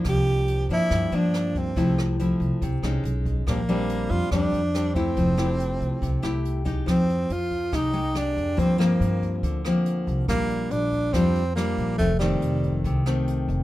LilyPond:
<<
  \new Staff \with { instrumentName = "Tenor saxophone" } { \time 4/4 \key f \major \tempo 4 = 141 g'4. e'4 d'4 c'8~ | c'8 r2. r8 | bes4. f'8 d'4. c'8~ | c'2. r4 |
\key f \mixolydian c'4 f'4 ees'4 d'4 | c'8 bes4. r2 | bes4 d'4 c'4 bes4 | a8 g4. r2 | }
  \new Staff \with { instrumentName = "Nylon-string guitar" } { \time 4/4 \key f \major << { <f bes d'>4. <f bes d'>4 <f bes d'>4. | <f a e'>4 <f a e'>4 r8 <aes des' ees'>4. | <g c' d'>8 <g c' d'>4. <g c' d'>8 r8 <g c' d'>8 <a e' g'>8~ | <a e' g'>8 <a e' g'>2 <a e' g'>4 <aes ees' g'>8~ |
\key f \mixolydian <aes ees' g'>8 r4. <aes ees' g'>8 <aes ees' g'>8 <aes g'>4 | <f bes c'>8 <f bes c'>2 <f bes c'>4. | <g d' f'>2 <g d' f'>8 r8 <g d' f'>4 | <ees a c'>8 <ees a c'>2 <ees a c'>4. | } \\ { c2 g,2 | c2 c4 r4 | bes,2 f2 | f2 c2 |
f2 c2 | g,2 d2 | bes,2 f2 | f,2 c2 | } >> }
  \new Staff \with { instrumentName = "Upright bass" } { \clef bass \time 4/4 \key f \major c,4. g,16 r16 g,8 g,4. | c,4. c,16 r16 c,8 c,8 b,,4 | bes,,4. f,16 r16 f,8 f,4. | f,,4. c,16 r16 c,8 c,4. |
\key f \mixolydian f,4 f,4 c,4. f,8 | g,4 g,4 d,4. c,8 | bes,,4 bes,,4 f,4. bes,,8 | f,,4 f,,4 c,4. f,,8 | }
  \new DrumStaff \with { instrumentName = "Drums" } \drummode { \time 4/4 <hh bd ss>8 hh8 hh8 hh8 <hh bd ss>8 hh8 <hh ss>8 <hh bd>8 | <hh bd>8 <hh ss>8 hh8 hh8 <hh bd>8 <hh ss>8 hh8 <hh bd>8 | <hh bd ss>8 hh8 hh8 hh8 <hh bd ss>8 hh8 <hh ss>8 <hh bd>8 | <hh bd>8 <hh ss>8 hh8 hh8 <hh bd>8 <hh ss>8 hh8 <hh bd>8 |
<hh bd ss>8 hh8 hh8 <hh bd>8 <hh bd ss>8 hh8 <hh ss>8 <hh bd>8 | <hh bd>8 <hh ss>8 hh8 <hh bd>8 <hh bd>8 <hh ss>8 hh8 <hh bd>8 | <hh bd ss>8 hh8 hh8 <hh bd>8 <hh bd ss>8 hh8 <hh ss>8 <hh bd>8 | <hh bd>8 <hh ss>8 hh8 <hh bd>8 <hh bd>8 <hh ss>8 hh8 <hh bd>8 | }
>>